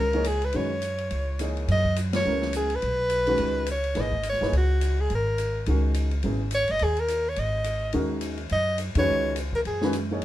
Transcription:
Already playing: upright bass C#2
0.00 soprano saxophone A#4
0.13 grand piano E3 A#3 D#4 G#4 C#5, ride
0.24 soprano saxophone G#4, hi-hat pedal, ride
0.42 soprano saxophone B4, ride
0.53 upright bass F#2, grand piano D#3 G#3 C#4 F#4 B4, soprano saxophone C#5, ride
0.82 hi-hat pedal, ride
0.98 ride
1.11 upright bass C#2, ride
1.39 grand piano E3 A#3 D#4 G#4 C#5, hi-hat pedal, ride
1.57 ride
1.68 upright bass F#2, soprano saxophone D#5, ride
1.85 kick
1.96 hi-hat pedal, ride
2.13 soprano saxophone C#5, snare, ride
2.25 upright bass C#2, grand piano C#3 F#3 B3 E4 A#4
2.42 snare
2.53 soprano saxophone G#4, hi-hat pedal, ride
2.70 ride
2.76 soprano saxophone B4
2.82 upright bass B1, ride
3.10 hi-hat pedal, ride
3.27 grand piano D#3 G#3 C#4 F#4 B4, ride
3.38 upright bass C#2, ride
3.66 hi-hat pedal, ride
3.71 soprano saxophone C#5
3.84 ride
3.95 upright bass G#1, grand piano E3 A#3 D#4 G#4 B4, snare, ride
4.01 soprano saxophone D#5
4.12 kick
4.23 hi-hat pedal, ride
4.29 soprano saxophone C#5, snare
4.41 upright bass G1, grand piano E3 A#3 D#4 G#4 B4, snare
4.52 upright bass C#2, ride
4.57 soprano saxophone F#4
4.81 hi-hat pedal, ride
5.00 soprano saxophone G#4
5.10 upright bass G#1, ride
5.15 soprano saxophone A#4
5.38 hi-hat pedal, ride
5.66 upright bass C#2, grand piano D#3 G#3 C#4 F#4 A#4, ride
5.94 hi-hat pedal, ride
6.11 ride
6.23 upright bass G#1, grand piano C#3 F#3 B3 E4 G#4, ride
6.51 soprano saxophone C#5, hi-hat pedal, ride
6.68 upright bass G1, soprano saxophone D#5, ride
6.79 upright bass D#2, ride
6.84 soprano saxophone G#4
6.97 soprano saxophone A#4, ride
7.08 hi-hat pedal, ride
7.29 soprano saxophone C#5
7.36 upright bass G#1, soprano saxophone D#5, ride
7.64 hi-hat pedal, ride
7.93 upright bass D#2, grand piano D#3 G#3 C#4 F#4 A#4, ride
8.21 hi-hat pedal, ride
8.38 ride
8.49 upright bass F#2, soprano saxophone D#5, ride
8.78 hi-hat pedal, ride
8.95 upright bass F2, grand piano D#3 G#3 C#4 F#4, soprano saxophone C#5, kick, ride
8.99 grand piano B4
9.07 upright bass C#2
9.36 hi-hat pedal, ride
9.53 soprano saxophone A#4, kick
9.65 upright bass F#2, soprano saxophone G#4, ride
9.81 grand piano D#3 G#3 C#4 F#4 B4, snare
9.93 hi-hat pedal, ride
10.11 grand piano E3 A#3 D#4 G#4 C#5
10.22 ride

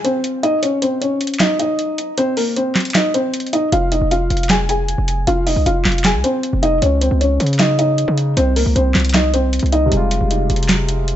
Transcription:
0.04 felt piano C4 C5, closed hi-hat
0.24 closed hi-hat
0.43 felt piano D#4 D#5, closed hi-hat
0.63 felt piano C#4 C#5, closed hi-hat
0.82 felt piano C4 C5, closed hi-hat
1.01 felt piano C#4 C#5, closed hi-hat
1.21 closed hi-hat
1.27 closed hi-hat
1.34 closed hi-hat
1.39 felt piano D#4 D#5, snare, clap, closed hi-hat
1.59 felt piano D#4 D#5, closed hi-hat
1.79 closed hi-hat
1.98 closed hi-hat
2.18 felt piano C4 C5, closed hi-hat
2.37 felt piano A#3 A#4, open hi-hat
2.56 felt piano C4 C5, closed hi-hat
2.75 snare, clap, closed hi-hat
2.80 closed hi-hat
2.85 closed hi-hat
2.90 closed hi-hat
2.94 felt piano D#4 D#5, snare, clap, closed hi-hat
3.14 felt piano C4 C5, closed hi-hat
3.34 closed hi-hat
3.40 closed hi-hat
3.47 closed hi-hat
3.53 felt piano D#4 D#5, closed hi-hat
3.72 808-style bass F1, felt piano F4 F5, closed hi-hat
3.92 felt piano D#4 D#5, closed hi-hat
4.01 808-style bass F1
4.11 felt piano F4 F5, closed hi-hat
4.30 808-style bass F1, closed hi-hat
4.37 closed hi-hat
4.43 closed hi-hat
4.49 felt piano G#4 G#5, snare, clap, closed hi-hat
4.69 felt piano G#4 G#5, closed hi-hat
4.88 closed hi-hat
4.98 808-style bass F1
5.08 closed hi-hat
5.27 808-style bass F1, felt piano F4 F5, closed hi-hat
5.47 felt piano D#4 D#5, open hi-hat
5.56 808-style bass C2
5.66 808-style bass F1, felt piano F4 F5, closed hi-hat
5.84 808-style bass F1, snare, clap, closed hi-hat
5.92 closed hi-hat
5.98 closed hi-hat
6.04 felt piano G#4 G#5, snare, clap, closed hi-hat
6.14 808-style bass C2
6.24 felt piano C4 C5, closed hi-hat
6.43 closed hi-hat
6.53 808-style bass F1
6.63 felt piano D#4 D#5, closed hi-hat
6.82 808-style bass C#2, felt piano C#4 C#5, closed hi-hat
7.01 felt piano C4 C5, closed hi-hat
7.11 808-style bass C#2
7.21 felt piano C#4 C#5, closed hi-hat
7.40 808-style bass C#3, closed hi-hat
7.47 closed hi-hat
7.53 closed hi-hat
7.59 felt piano D#4 D#5, snare, clap, closed hi-hat
7.79 felt piano D#4 D#5, closed hi-hat
7.98 closed hi-hat
8.08 808-style bass C#3
8.18 closed hi-hat
8.37 808-style bass C2, felt piano C4 C5, closed hi-hat
8.56 felt piano A#3 A#4, open hi-hat
8.66 808-style bass C2
8.76 808-style bass C2, felt piano C4 C5, closed hi-hat
8.94 808-style bass C2, snare, clap, closed hi-hat
9.00 closed hi-hat
9.05 closed hi-hat
9.09 closed hi-hat
9.13 felt piano D#4 D#5, snare, clap, closed hi-hat
9.34 felt piano C4 C5, closed hi-hat
9.53 closed hi-hat
9.59 808-style bass C2, closed hi-hat
9.66 closed hi-hat
9.72 felt piano D#4 D#5, closed hi-hat
9.82 808-style bass C#2, grand piano C3
9.90 808-style bass F1, grand piano G3 G#3, closed hi-hat
9.97 grand piano F4
10.11 closed hi-hat
10.21 808-style bass F1
10.31 closed hi-hat
10.50 808-style bass F1, closed hi-hat
10.56 closed hi-hat
10.63 closed hi-hat
10.68 snare, clap, closed hi-hat
10.89 closed hi-hat
11.08 closed hi-hat

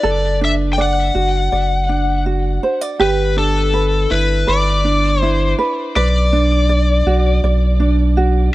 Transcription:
Already playing: ukulele D4 E4 B4, electric slide guitar D5
0.03 sub bass F#1, ukulele A4
0.41 ukulele D4, electric slide guitar E5
0.73 electric slide guitar G5
0.78 ukulele D5, electric slide guitar F#5
1.15 sub bass F#1, ukulele F#4
1.52 sub bass F#1, ukulele D5
1.89 ukulele D4
2.26 ukulele F#4
2.63 ukulele C5
2.81 ukulele D5
3.00 sub bass G1, ukulele G4, electric slide guitar B4
3.37 ukulele D4, electric slide guitar A4
3.74 ukulele B4
4.11 sub bass G1, ukulele E4, electric slide guitar B4
4.47 sub bass G1, ukulele B4, electric slide guitar D5
4.85 ukulele D4
5.22 ukulele E4, electric slide guitar C5
5.59 ukulele B4
5.96 sub bass B1, ukulele B4, electric slide guitar D5
6.33 ukulele D4
6.69 ukulele D5
7.06 sub bass B1, ukulele F#4
7.43 sub bass B1, ukulele D5
7.80 ukulele D4
8.17 ukulele F#4

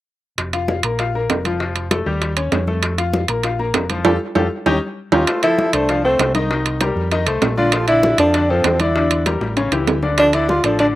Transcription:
0.38 fingered electric bass F1, high bongo, high conga, high timbale
0.53 grand piano F4 F5, high bongo, high conga, high timbale
0.68 high bongo, high conga, low timbale
0.83 fingered electric bass A#1, grand piano A#3 A#4, high bongo, high conga, high timbale
0.99 grand piano F4 F5, high bongo, high conga, high timbale
1.14 grand piano A#3 A#4, high bongo, high conga
1.29 fingered electric bass F1, high bongo, low bongo, high conga, high timbale, low timbale
1.45 grand piano F3 F4, high conga, high timbale
1.60 grand piano F3 F4, high bongo
1.76 high bongo, high conga, high timbale
1.91 grand piano A3 A4, high bongo, high conga, high timbale, low timbale
2.06 fingered electric bass D#2, grand piano G3 G4, high bongo, high conga
2.21 high bongo, high conga, high timbale
2.37 grand piano C#4 C#5, high conga, high timbale
2.52 fingered electric bass F2, high bongo, low bongo, high conga, high timbale, low timbale
2.67 grand piano A3 A4, high bongo, high conga
2.83 high bongo, high timbale
2.98 grand piano F4 F5, high bongo, high conga, high timbale
3.13 high bongo, high conga, low timbale
3.28 fingered electric bass A#1, grand piano A#3 A#4, high bongo, high conga, high timbale
3.43 grand piano F4 F5, high bongo, high conga, high timbale
3.59 grand piano A#3 A#4, high bongo, high conga
3.74 fingered electric bass F1, high bongo, low bongo, high conga, high timbale, low timbale
3.90 grand piano F3 F4, high conga, high timbale
4.05 fingered electric bass F2, grand piano F4 G4 A4, low bongo, high conga, high timbale
4.35 fingered electric bass F2, grand piano F4 G4 A4, low bongo, high conga, high timbale
4.66 fingered electric bass D#2, grand piano C#4 D#4 G4, low bongo, high conga, high timbale
5.12 fingered electric bass D#2, grand piano C#4 D#4 G4, tenor saxophone F4, low bongo, high conga, high timbale
5.27 grand piano A3 A4 C5, high bongo, high conga, high timbale
5.43 grand piano F3 A4 E5, tenor saxophone E4, high bongo, high conga, high timbale
5.58 high bongo, high conga, low timbale
5.73 fingered electric bass C2, grand piano A3 A4 C5, tenor saxophone D4, high bongo, high conga, high timbale
5.89 grand piano F3 F4 F5, high bongo, high conga, high timbale
6.04 grand piano A3 A4 C5, tenor saxophone C4, high bongo, high conga
6.19 fingered electric bass C2, high bongo, low bongo, high conga, high timbale, low timbale
6.34 grand piano D#3 D#4 D#5, tenor saxophone D#4, high conga, high timbale
6.50 grand piano D#3 D#4 D#5, high bongo, high conga
6.66 high bongo, high conga, high timbale
6.81 grand piano G3 G4 A#4, high bongo, high conga, high timbale, low timbale
6.95 fingered electric bass F2, high bongo, high conga
7.11 grand piano D#3 D#4 D#5, high bongo, high conga, high timbale
7.26 fingered electric bass C2, grand piano A3 A4 C5, high conga, high timbale
7.42 fingered electric bass A#1, high bongo, low bongo, high conga, high timbale, low timbale
7.57 grand piano D3 D4 D5, tenor saxophone F4, high bongo, high conga
7.72 grand piano F3 F4 A4, high bongo, high conga, high timbale
7.88 grand piano D3 D4 D5, tenor saxophone E4, high conga, high timbale
8.03 high bongo, high conga, low timbale
8.18 fingered electric bass F2, grand piano F3 F4 A4, tenor saxophone D4, high bongo, high conga, high timbale
8.34 grand piano D3 D4 D5, high bongo, high conga, high timbale
8.50 grand piano F3 F4 A4, tenor saxophone C4, high bongo, high conga
8.64 fingered electric bass E2, high bongo, low bongo, high timbale, low timbale
8.80 grand piano D3 D4 D5, tenor saxophone E4, high conga, high timbale
8.96 grand piano D3 D4 D5, high bongo, high conga
9.11 high bongo, high conga, high timbale
9.26 grand piano G3 G4 A#4, high bongo, high conga, high timbale, low timbale
9.41 fingered electric bass A1, high bongo, high conga
9.56 grand piano C#3 C#4 C#5, low bongo, high conga, high timbale
9.71 fingered electric bass C#2, grand piano E3 E4 G4, low bongo, high conga, high timbale
9.87 fingered electric bass D2, high conga, high timbale, low timbale
10.03 grand piano D3 D4 D5, low bongo, high conga
10.18 grand piano F3 F4 A4, tenor saxophone D4, high bongo, high conga, high timbale
10.33 grand piano D3 D4 D5, tenor saxophone E4, high bongo, high conga, high timbale
10.49 tenor saxophone F4, high bongo, high conga, low timbale
10.64 fingered electric bass A1, grand piano F3 F4 A4, tenor saxophone D4, high bongo, high conga, high timbale
10.79 grand piano D3 D4 D5, tenor saxophone D4, high bongo, high conga, high timbale

